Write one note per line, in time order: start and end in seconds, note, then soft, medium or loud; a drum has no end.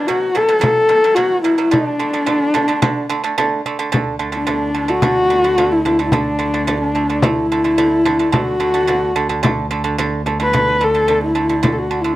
0.07 0.31 B2 medium
0.07 0.31 F#3 medium
0.07 0.38 F#4 loud
0.07 frame drum soft
0.35 0.47 B2 medium
0.35 0.47 F#3 medium
0.35 0.62 A4 loud
0.35 frame drum soft
0.48 0.60 B2 medium
0.48 0.60 F#3 medium
0.61 0.84 B2 medium
0.61 0.84 F#3 loud
0.61 1.17 A4 loud
0.61 frame drum medium
0.89 1.01 B2 medium
0.89 1.01 F#3 medium
0.89 frame drum soft
1.04 1.15 B2 medium
1.04 1.15 F#3 medium
1.15 1.39 B2 medium
1.15 1.40 F#3 loud
1.15 1.42 F#4 loud
1.15 frame drum soft
1.43 1.56 B2 medium
1.43 1.56 F#3 medium
1.43 1.72 E4 medium
1.43 frame drum soft
1.58 1.70 B2 medium
1.58 1.70 F#3 medium
1.70 1.94 D3 medium
1.70 1.94 A3 loud
1.70 3.64 D4 medium
1.70 frame drum medium
1.99 2.11 D3 medium
1.99 2.11 A3 medium
1.99 frame drum soft
2.13 2.25 D3 medium
2.13 2.25 A3 medium
2.26 2.49 D3 medium
2.26 2.50 A3 loud
2.26 frame drum medium
2.54 2.66 D3 medium
2.54 2.66 A3 medium
2.54 frame drum medium
2.68 2.80 D3 medium
2.68 2.80 A3 medium
2.82 3.05 D3 loud
2.82 3.05 A3 loud
2.82 frame drum medium
3.09 3.21 D3 medium
3.09 3.21 A3 medium
3.09 frame drum soft
3.24 3.35 D3 medium
3.24 3.35 A3 medium
3.38 3.60 D3 loud
3.38 3.60 A3 loud
3.38 frame drum medium
3.66 3.77 D3 medium
3.66 3.77 A3 medium
3.66 frame drum soft
3.79 3.90 D3 medium
3.79 3.90 A3 medium
3.92 8.32 D2 medium
3.92 4.15 D3 loud
3.92 4.15 A3 loud
3.92 frame drum medium
4.19 4.31 D3 medium
4.19 4.31 A3 medium
4.19 frame drum soft
4.32 4.44 D3 medium
4.32 4.44 A3 medium
4.32 4.91 D4 medium
4.47 4.69 D3 medium
4.47 4.70 A3 medium
4.47 frame drum medium
4.74 4.86 D3 medium
4.74 4.86 A3 medium
4.88 5.00 D3 medium
4.88 5.00 A3 medium
4.88 5.73 F#4 loud
4.88 frame drum soft
5.02 5.25 D3 medium
5.02 5.25 A3 medium
5.02 frame drum medium
5.30 5.42 D3 medium
5.30 5.41 A3 medium
5.44 5.55 D3 medium
5.44 5.55 A3 medium
5.44 frame drum soft
5.58 5.80 D3 medium
5.58 5.80 A3 medium
5.58 frame drum medium
5.72 6.05 E4 medium
5.85 5.97 D3 medium
5.85 5.97 A3 medium
5.85 frame drum medium
5.99 6.10 D3 medium
5.99 6.11 A3 medium
6.06 6.14 E4 medium
6.12 6.35 D3 medium
6.12 6.35 A3 medium
6.12 6.80 D4 medium
6.12 frame drum medium
6.39 6.51 D3 medium
6.39 6.51 A3 medium
6.54 6.65 D3 medium
6.54 6.65 A3 medium
6.67 6.90 D3 medium
6.67 6.90 A3 medium
6.67 frame drum medium
6.80 7.25 D4 medium
6.95 7.06 D3 medium
6.95 7.07 A3 medium
7.10 7.21 D3 medium
7.10 7.21 A3 medium
7.22 7.45 D3 medium
7.22 7.45 A3 loud
7.22 8.38 E4 medium
7.22 frame drum medium
7.52 7.62 D3 medium
7.52 7.62 A3 medium
7.64 7.76 D3 medium
7.64 7.76 A3 medium
7.64 frame drum soft
7.78 8.00 D3 medium
7.78 8.00 A3 loud
7.78 frame drum medium
8.05 8.17 D3 medium
8.05 8.17 A3 medium
8.05 frame drum medium
8.19 8.31 D3 medium
8.19 8.31 A3 medium
8.32 12.16 D2 medium
8.32 8.55 D3 medium
8.32 8.55 A3 medium
8.32 frame drum medium
8.36 9.48 F#4 medium
8.60 8.71 D3 medium
8.60 8.72 A3 medium
8.60 frame drum soft
8.74 8.85 D3 medium
8.74 8.86 A3 medium
8.87 9.10 D3 medium
8.87 9.10 A3 medium
8.87 frame drum medium
9.16 9.27 D3 medium
9.16 9.27 A3 medium
9.29 9.41 D3 medium
9.29 9.41 A3 medium
9.29 frame drum soft
9.43 9.65 D3 loud
9.43 9.65 A3 loud
9.43 frame drum medium
9.71 9.82 D3 medium
9.71 9.82 A3 medium
9.84 9.95 D3 medium
9.84 9.95 A3 medium
9.84 frame drum soft
9.98 10.21 D3 loud
9.98 10.21 A3 loud
9.98 frame drum medium
10.26 10.37 D3 medium
10.26 10.37 A3 medium
10.26 frame drum medium
10.40 10.51 D3 medium
10.40 10.51 A3 medium
10.40 10.85 B4 medium
10.53 10.75 D3 medium
10.53 10.76 A3 loud
10.53 frame drum medium
10.81 10.92 D3 medium
10.81 10.92 A3 medium
10.81 11.24 A4 loud
10.94 11.06 D3 medium
10.94 11.06 A3 medium
11.08 11.30 D3 medium
11.08 11.30 A3 medium
11.08 frame drum medium
11.24 11.74 E4 medium
11.35 11.47 D3 medium
11.35 11.47 A3 medium
11.49 11.61 D3 medium
11.49 11.61 A3 medium
11.49 frame drum soft
11.63 11.85 D3 medium
11.63 11.85 A3 medium
11.63 frame drum medium
11.72 11.80 A4 medium
11.78 12.02 F#4 medium
11.91 12.02 D3 medium
11.91 12.02 A3 medium
12.01 12.16 D3 medium
12.01 12.16 A3 medium
12.01 12.14 E4 medium
12.05 frame drum soft
12.12 12.16 D4 medium